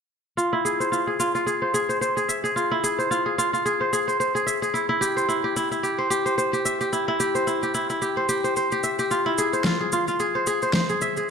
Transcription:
0.37 F4, shaker
0.53 E4
0.65 G#4, shaker
0.80 C5, shaker
0.92 F4, shaker
1.07 G#4
1.20 F4, shaker
1.35 F4, shaker
1.46 G#4, shaker
1.62 C5
1.74 G#4, shaker
1.89 C5, shaker
2.01 C5, shaker
2.17 G#4, shaker
2.29 E5, shaker
2.44 G#4, shaker
2.56 F4, shaker
2.71 E4
2.84 G#4, shaker
2.99 C5, shaker
3.11 F4, shaker
3.26 G#4
3.38 F4, shaker
3.53 F4, shaker
3.66 G#4, shaker
3.81 C5
3.93 G#4, shaker
4.08 C5, shaker
4.20 C5, shaker
4.35 G#4, shaker
4.46 E5, shaker
4.62 G#4, shaker
4.74 E4, shaker
4.89 E4
5.01 G4, shaker
5.17 C5, shaker
5.29 E4, shaker
5.44 G4
5.56 E4, shaker
5.71 E4, shaker
5.83 G4, shaker
5.98 C5
6.10 G4, shaker
6.26 C5, shaker
6.38 C5, shaker
6.53 G4, shaker
6.65 E5, shaker
6.81 G4, shaker
6.93 E4, shaker
7.08 E4
7.20 G4, shaker
7.35 C5, shaker
7.47 E4, shaker
7.63 G4, shaker
7.74 E4, shaker
7.90 E4, shaker
8.02 G4, shaker
8.17 C5
8.29 G4, shaker
8.44 C5, shaker
8.57 C5, shaker
8.72 G4, shaker
8.84 E5, shaker
8.99 G4, shaker
9.11 F4, shaker
9.26 E4
9.38 G#4, shaker
9.53 C5, shaker
9.64 F4, snare, shaker
9.81 G#4
9.92 F4, shaker
10.08 F4, shaker
10.20 G#4, shaker
10.35 C5
10.47 G#4, shaker
10.62 C5, shaker
10.73 C5, snare, shaker
10.89 G#4, shaker
11.01 E5, shaker
11.17 G#4, shaker

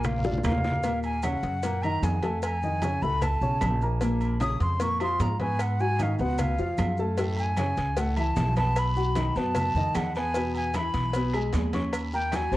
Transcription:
Already playing: A#1 A#2 A#3 A#4
0.04 F5, high bongo, low conga, high timbale, long guiro, claves, maracas
0.18 low conga
0.24 D3 D4 F4, high bongo, maracas
0.31 low conga
0.38 low bongo
0.43 D#2 A#2 A#3 A#4 F5, low conga, high timbale, low timbale, short guiro, claves, maracas
0.52 low bongo
0.58 low conga
0.64 low bongo, short guiro, maracas
0.71 low conga
0.83 A#2 A#3 A#4, cowbell, high conga, low agogo, maracas
1.03 G#5, high conga, low agogo, maracas
1.23 C#3 C#4 C#5 F#5, cowbell, high conga, low timbale, low agogo, claves, maracas
1.43 F#2, cowbell, high conga, maracas
1.63 A#2 A#3 A#4, cowbell, high conga, low agogo, maracas
1.83 D#3 D#4 D#5 A#5, high conga, low agogo, claves, maracas
2.02 F2 G#5, cowbell, high conga, low timbale, maracas
2.23 A3 A4 A5, cowbell, high conga, low agogo, maracas
2.42 G#5, cowbell, high conga, low agogo, claves, maracas
2.62 D#3 D#4 D#5, high conga, maracas
2.82 C#3 C#4 C#5, cowbell, high conga, low timbale, low agogo, maracas
3.02 C#2 A2 A3 A4 B5, maracas
3.22 A5, cowbell, high conga, low conga, low agogo, claves, maracas
3.41 B1 C#3 C#4 C#5, high conga, maracas
3.61 A#1, cowbell, high conga, low timbale, low agogo, claves, maracas
3.82 A#3 A#4 A#5, high conga, maracas
4.01 A#2 A#3 A#4, cowbell, high conga, low agogo, maracas
4.21 high conga, low agogo, maracas
4.40 C#3 C#4 C#5 D#6, cowbell, high conga, low timbale, low agogo, claves, maracas
4.60 F2 C6, cowbell, high conga, maracas
4.80 A#2 A#3 A#4 C#6, cowbell, high conga, low agogo, maracas
5.00 F3 F4 F5 C6, high conga, low agogo, claves, maracas
5.20 G#2 A#5, cowbell, high conga, low timbale, maracas
5.40 B3 B4 G#5 B5, cowbell, high conga, low agogo, maracas
5.59 F#5, cowbell, high conga, low agogo, claves, maracas
5.80 F#3 F#4 F#5 G#5, high conga, maracas
5.99 D#3 D#4 D#5 F5, cowbell, high conga, low timbale, low agogo, maracas
6.19 C#2 B2 B3 B4 F#5, maracas
6.38 F5, cowbell, high conga, low conga, low agogo, claves, maracas
6.58 F2 F3 F4 F5, high conga, maracas
6.78 F#2, cowbell, high conga, low timbale, low agogo, claves, maracas
6.97 A3 A4 A5, high conga, maracas
7.17 A2 A3 A4, cowbell, high conga, low agogo, long guiro, maracas
7.37 G#5, high conga, low agogo, maracas
7.57 C#3 C#4 C#5, cowbell, high conga, low timbale, low agogo, short guiro, claves, maracas
7.77 C#2, cowbell, high conga, short guiro, maracas
7.96 A2 A3 A4 F#5, cowbell, high conga, low agogo, long guiro, maracas
8.16 E3 E4 E5 A5, high conga, low agogo, claves, maracas
8.36 B1, cowbell, high conga, low timbale, short guiro, maracas
8.56 B3 B4 A5 B5, cowbell, high conga, low agogo, short guiro, maracas
8.76 B5, cowbell, high conga, low agogo, long guiro, claves, maracas
8.96 F#3 F#4 F#5, high conga, maracas
9.15 D#3 D#4 D#5, cowbell, high conga, low timbale, low agogo, short guiro, maracas
9.36 F#2 B2 B3 B4 A5, short guiro, maracas
9.55 cowbell, high conga, low conga, low agogo, long guiro, claves, maracas
9.75 F2 D#3 D#4 D#5, high conga, low conga, maracas
9.95 E2 F#5, cowbell, high conga, low timbale, low agogo, short guiro, claves, maracas
10.15 B3 B4 G#5 B5, high conga, short guiro, maracas
10.34 B2 B3 B4, cowbell, high conga, low agogo, long guiro, maracas
10.55 G#5, high conga, low agogo, maracas
10.74 E3 E4 E5 B5, cowbell, high conga, low timbale, low agogo, short guiro, claves, maracas
10.94 B1, cowbell, high conga, short guiro, maracas
11.13 B2 B3 B4, cowbell, high conga, low agogo, long guiro, maracas
11.33 G#3 G#4 G#5, high conga, low agogo, claves, maracas
11.53 D#2, cowbell, high conga, low timbale, short guiro, maracas
11.73 C#4 C#5 C#6, cowbell, high conga, low agogo, short guiro, maracas
11.92 cowbell, high conga, low agogo, long guiro, claves, maracas
12.13 A#3 A#4 G5 A#5, high conga, maracas
12.32 F#3 F#4 F#5 G#5, cowbell, high conga, low timbale, low agogo, short guiro, maracas
12.51 G#1 C3 C4 C5, short guiro, maracas

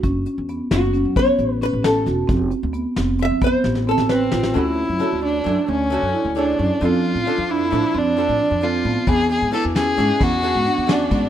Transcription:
0.03 F#1 C#4, kick, closed hi-hat
0.26 closed hi-hat
0.38 E2
0.49 B3, closed hi-hat
0.71 F#1 C#4 F#4, snare, closed hi-hat
0.94 C#4, closed hi-hat
1.05 F#2
1.16 B3 C#5, kick, closed hi-hat
1.39 A1, closed hi-hat
1.61 C#4 B4, snare, closed hi-hat
1.73 A1
1.83 C#4 A4, snare, closed hi-hat
2.06 E1 F#4, snare, closed hi-hat
2.28 F1 C4, kick, closed hi-hat
2.51 closed hi-hat
2.63 D2
2.73 B3, closed hi-hat
2.96 F1 C4, snare, closed hi-hat
3.19 C4 E5, closed hi-hat
3.31 F2
3.41 B3 C5, kick, closed hi-hat
3.64 A1, snare
3.75 snare
3.87 C4 A4
3.98 A1, snare
4.09 C4 B4, snare
4.32 A1 F4, snare
4.43 snare
4.54 D2 D3 A3 C#4 E4 F#4
4.89 F#2
4.99 D3 A3 C#4 F#4 A4
5.12 D2
5.23 D4
5.44 F#2 D3 A3 C#4 D4 E4
5.68 D2 C#4
5.90 D3 A3 C#4 F#4
6.02 F#2
6.13 E4
6.25 D2
6.35 D3 A3 D4 G#4 C#5
6.59 F#2 C#4
6.81 F2 F3 C4 D4 F4 A4
7.15 A2
7.25 F3 C4 D4 F4 A4
7.38 F2
7.49 D4 E4
7.71 A2 F3 C4 D4 A4
7.94 F2 C4 D4
8.17 F3 C4 D4 A4
8.29 A2
8.39 D4
8.51 F2
8.61 F3 C4 D4 F4 A4
8.85 A2 B3
9.07 E2 E3 B3 D4 F#4 G#4, kick, ride
9.30 G#4, ride
9.42 G#2
9.51 E3 D4 E4 F#4 A4 B4, ride
9.65 E2
9.75 C#4 G#4, snare, ride
9.97 G#2 E3 C#4 D4 F#4 G#4, ride
10.20 E2 B3 F#4, kick, ride
10.42 E3 D4 F#4 G#4, ride
10.55 G#2
10.66 D4, ride
10.78 E2
10.87 E3 C#4 D4 F#4 G#4, snare, ride
10.92 D4
11.11 G#2 B3, kick, ride

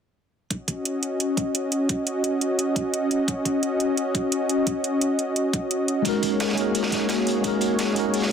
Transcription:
0.50 C#4 F#4 D#5, kick, closed hi-hat
0.68 kick, closed hi-hat
0.85 closed hi-hat
1.03 closed hi-hat
1.20 closed hi-hat
1.37 kick, closed hi-hat
1.55 closed hi-hat
1.72 closed hi-hat
1.89 kick, closed hi-hat
2.07 closed hi-hat
2.24 closed hi-hat
2.41 closed hi-hat
2.59 closed hi-hat
2.76 kick, closed hi-hat
2.94 closed hi-hat
3.11 closed hi-hat
3.28 kick, closed hi-hat
3.45 kick, closed hi-hat
3.63 closed hi-hat
3.80 closed hi-hat
3.97 closed hi-hat
4.15 kick, closed hi-hat
4.32 closed hi-hat
4.49 closed hi-hat
4.67 kick, closed hi-hat
4.84 closed hi-hat
5.01 closed hi-hat
5.19 closed hi-hat
5.36 closed hi-hat
5.53 kick, closed hi-hat
5.71 closed hi-hat
5.88 closed hi-hat
6.02 G#3 A#3 C#4 D#4 F#4 G#4 C#5, kick, closed hi-hat
6.07 F#4 A#4
6.23 kick, closed hi-hat
6.40 snare, closed hi-hat
6.49 snare
6.54 G#3 C#4 D#4, closed hi-hat
6.59 F#4 A#4
6.75 closed hi-hat
6.83 snare
6.92 kick, snare, closed hi-hat
7.09 snare, closed hi-hat
7.27 closed hi-hat
7.41 G#3 C#4 D#4, kick, closed hi-hat
7.46 F#4 A#4
7.61 closed hi-hat
7.79 snare, closed hi-hat
7.93 G#3 C#4 D#4, closed hi-hat
7.98 F#4 A#4
8.14 closed hi-hat, open hi-hat
8.22 snare

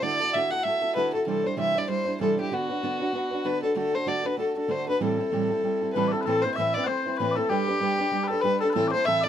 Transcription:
0.02 D3 A3 E4 F#4 A4 D5
0.20 E4 F#4 A4
0.33 D3 A3 E4 F#4 A4 E5
0.50 E4 F#4 A4 F#5
0.63 A3 E4 F#4 E5
0.68 A4
0.82 E4 F#4 A4
0.95 D3 A3 E4 F#4 A4 B4
1.13 E4 F#4 A4
1.26 C3 E3 G3 D4 E4 A4 C5
1.44 G3 D4 E4 C5
1.57 C3 E3 G3 D4 E4 C5 E5
1.75 G3 D4 E4 C5 D5
1.89 G3 D4 E4 C5
2.05 G3 D4 E4 C5
2.20 C3 E3 G3 D4 E4 A4 C5
2.38 G3 D4 E4 G4 C5
2.51 D3 B3 D4 F#4 B4
2.69 D4 F#4 B4
2.83 D3 B3 D4 F#4 B4
3.00 D4 F#4 B4
3.13 B3 D4 F#4 B4
3.31 D4 F#4 B4
3.45 D3 B3 D4 F#4 B4
3.62 D4 F#4 A4 B4
3.75 D3 A3 D4 F#4 A4
3.94 D4 F#4 A4 C5
4.06 D3 A3 D4 F#4 A4 D5
4.24 D4 F#4 A4 B4
4.37 A3 D4 F#4 A4
4.55 D4 F#4 A4
4.68 D3 A3 D4 F#4 A4 C5
4.87 D4 F#4 A4 B4
5.00 A2 E3 G3 C4 E4 A4
5.19 G3 C4 E4 A4
5.32 A2 E3 G3 C4 E4 A4
5.51 G3 C4 E4 A4
5.63 G3 C4 E4 A4
5.81 G3 C4 E4 A4
5.93 A2 E3 G3 C4 E4 B4
5.97 A4
6.08 A4 D5
6.12 G3 C4 E4 A4
6.21 A4 B4
6.26 A2 E3 A3 C4 E4 A4 B4
6.41 E4 B4 C5
6.46 A3 C4
6.54 A2 E3 E5
6.59 A3 C4 E4 B4
6.74 E4 B4 D5
6.79 A3 C4
6.84 A3 C5 F#5
6.89 C4 E4 B4
7.06 A3 C4 E4 B4
7.18 A2 E3 A3 C4 E4 B4
7.31 D5
7.35 A3 C4 E4 A4 B4
7.49 G3 D4 G4 B4
7.68 D4 G4 B4
7.80 G3 D4 G4 B4
7.98 D4 G4 B4
8.12 G3 D4 G4 B4
8.24 B4
8.28 A4 B4
8.32 D4 G4
8.41 G3 D4 G4 B4
8.45 B4
8.60 G4 A4 B4
8.65 D4
8.70 A4 B4
8.75 A2 E3 A3 C4 E4 A4
8.88 C5 D5
8.92 C4 A4 C5
8.96 A3
9.05 A2 E3 A3 C4 E4 A4 E5
9.21 A4 D5
9.25 E4

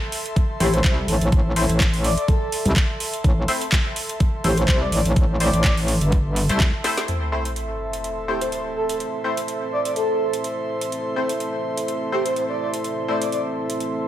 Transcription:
Already playing: A4 E5 A5 C6
0.12 open hi-hat
0.26 closed hi-hat
0.36 kick, closed hi-hat
0.60 A1 A3 C4 E4 G4 C5, open hi-hat
0.74 C5, closed hi-hat
0.84 C2 C5, kick, clap, closed hi-hat
1.08 A1 A4, open hi-hat
1.21 A1 A4, closed hi-hat
1.32 kick, closed hi-hat
1.56 A3 C4 E4 C5, open hi-hat
1.69 A1, closed hi-hat
1.80 kick, clap, closed hi-hat
1.94 open hi-hat
2.04 D5, open hi-hat
2.17 D5, closed hi-hat
2.28 A4, kick, closed hi-hat
2.52 open hi-hat
2.65 C2, closed hi-hat
2.76 kick, clap, closed hi-hat
3.00 open hi-hat
3.13 closed hi-hat
3.24 A1, kick, closed hi-hat
3.48 A3 C4 E4 C5, open hi-hat
3.61 closed hi-hat
3.72 kick, clap, closed hi-hat
3.96 open hi-hat
4.09 closed hi-hat
4.20 kick, closed hi-hat
4.44 A1 A3 C4 E4 G4 C5, open hi-hat
4.57 C5, closed hi-hat
4.68 C2 C5, kick, clap, closed hi-hat
4.81 D5
4.92 A1 D5, open hi-hat
5.05 A1, closed hi-hat
5.16 kick, closed hi-hat
5.40 A3 C4 E4 C5 D5, open hi-hat
5.53 A1 D5, closed hi-hat
5.64 kick, clap, closed hi-hat
5.77 open hi-hat
5.88 open hi-hat
6.01 G1, closed hi-hat
6.12 kick, closed hi-hat
6.36 open hi-hat
6.49 C2 A3 C4 E4 C5, closed hi-hat
6.60 kick, clap, closed hi-hat
6.84 A3 C4 E4 C5, snare, open hi-hat
6.97 snare, closed hi-hat
7.08 A3 C4 E4 A4 C5, closed hi-hat, sub drop
7.17 E5
7.26 C6
7.32 A3 C4 E4 C5
7.42 A5, closed hi-hat
7.56 closed hi-hat
7.93 closed hi-hat
8.04 closed hi-hat
8.28 A3 C4 E4 G4 C5
8.41 C5, closed hi-hat
8.52 C5, closed hi-hat
8.76 A4
8.89 A4, closed hi-hat
9.00 closed hi-hat
9.24 A3 C4 E4 C5
9.37 closed hi-hat
9.48 closed hi-hat
9.72 D5
9.85 D5, closed hi-hat
9.96 A4, closed hi-hat
10.33 closed hi-hat
10.44 closed hi-hat
10.81 closed hi-hat
10.92 closed hi-hat
11.16 A3 C4 E4 C5
11.29 closed hi-hat
11.40 closed hi-hat
11.77 closed hi-hat
11.88 closed hi-hat
12.12 A3 C4 E4 G4 C5
12.26 C5, closed hi-hat
12.36 C5, closed hi-hat
12.50 D5
12.60 D5
12.74 closed hi-hat
12.84 closed hi-hat
13.08 A3 C4 E4 C5 D5
13.22 D5, closed hi-hat
13.32 D5, closed hi-hat
13.70 closed hi-hat
13.80 closed hi-hat

